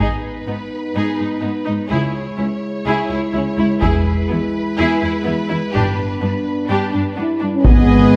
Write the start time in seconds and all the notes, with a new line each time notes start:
0.00 G#1 B3 D#4 G#4 B4, taiko
0.46 G#2 B3 D#4
0.95 G#2 D#4 G#4
1.18 G#2 D#4
1.41 G#2 B3 D#4
1.65 G#2 D#4
1.89 C#2 G#3 E4 G#4 C#5
2.37 C#2 C#4 E4
2.86 C#2 E4 G#4
3.09 C#2 E4
3.33 C#2 C#4 E4
3.57 C#2 E4
3.81 E1 E2 E4 G#4 B4, taiko
4.28 E2 B3 E4
4.77 E2 E4 G#4
5.02 E2 E4
5.25 E2 B3 E4
5.48 E2 E4
5.71 G1 G2 B3 D4 G4
6.21 G2 B3 D4
6.68 G2 D4 G4
6.92 G2 D4
7.16 G2 B3 D4 E4
7.40 G2 D4
7.54 C#4
7.63 G#1 G#2 B3 G#4 B4 D#5 G#5, taiko